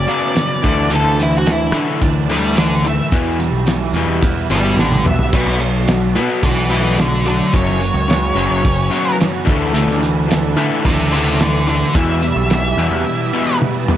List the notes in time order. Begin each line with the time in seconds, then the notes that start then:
Already playing: C#3 F#3 C#4 D5
0.07 F#2 C#3 F#3 B3, closed hi-hat
0.36 F#2 C#3 F#3, snare, closed hi-hat
0.63 D2 D3 E3 A3, kick, closed hi-hat
0.90 D2 D3 E3 A3, closed hi-hat
0.96 A4
1.04 D2
1.18 D3 E3, closed hi-hat
1.23 E4
1.38 F#4
1.46 D3 E3, snare, closed hi-hat
1.52 E4
1.72 D3 E3 A3, closed hi-hat
2.01 D2 D3 E3 D4, kick, closed hi-hat
2.29 D3 E3 A3 D5 G5, closed hi-hat
2.56 D3 E3 A4 D5, snare, closed hi-hat
2.84 D3 E3 A3 E5, closed hi-hat
3.11 E2 B2 E3, kick, closed hi-hat
3.39 E2 B2 G3, closed hi-hat
3.52 B1
3.67 E2 B2 E3, snare, closed hi-hat
3.93 E2 B2 E3 G3, closed hi-hat
4.07 E2
4.22 E2 B2 E4, kick, closed hi-hat
4.50 G1 E2 B2 E3 B3 D5 G5, closed hi-hat
4.76 A1 E2 B2 G3 A4, snare
4.80 D5
4.92 high tom
5.04 B1 E2 B2 B3 E5, mid tom
5.19 floor tom
5.32 B1 B2 F#3 B3 F#4 A4 D5, kick, closed hi-hat, crash
5.46 B1, snare
5.60 B2 F#3, closed hi-hat
5.88 B2 F#3, snare, closed hi-hat
6.15 B2 F#3 B3, closed hi-hat
6.43 B1 B2 F#3 D4 B4 E5, kick, closed hi-hat
6.70 B2 F#3 A3 B3 B4 E5, closed hi-hat
6.98 B2 F#3 A4 D5, snare, closed hi-hat
7.26 B2 F#3 A3 A4 D5, closed hi-hat
7.52 F#1 F#2 C#3 F#3 B4 C#5, kick, closed hi-hat
7.69 snare
7.80 F#2 C#3 F#3, closed hi-hat
7.94 C#2
8.08 F#2 C#3, snare, closed hi-hat
8.35 F#1 F#2 C#3 F#3, closed hi-hat
8.50 F#1
8.63 F#1 F#2 C#3 C#4, kick, closed hi-hat
8.90 F#2 C#3 F#3 B3, closed hi-hat
9.17 F#2 C#3 F#3, closed hi-hat
9.21 snare
9.43 D2 D3 E3 A3 D4 A4 E5
9.47 D3, kick, closed hi-hat
9.73 D2 D3 E3 A3, closed hi-hat
9.87 D2, snare
10.01 D3 E3, closed hi-hat
10.28 D3 E3, snare, closed hi-hat
10.56 D3 E3 A3, closed hi-hat
10.84 D2 D3 E3 D4 C5 E5, kick, closed hi-hat
11.11 D3 E3 A3 C5 E5, closed hi-hat
11.38 D3 E3 A4 D5, snare, closed hi-hat
11.67 D3 E3 A3 A4 D5, closed hi-hat
11.95 E2 B2 E3 B3 G4 E5, kick, closed hi-hat
12.23 E2 B2 G3, closed hi-hat
12.36 B1
12.50 E2 B2 E3, snare, closed hi-hat
12.78 E2 B2 E3 G3, closed hi-hat
12.91 E2
13.04 E2 B2 E4
13.33 E2 B2 E3 B3
13.61 E2 B2 G3, high tom
13.88 E2 B2 B3, mid tom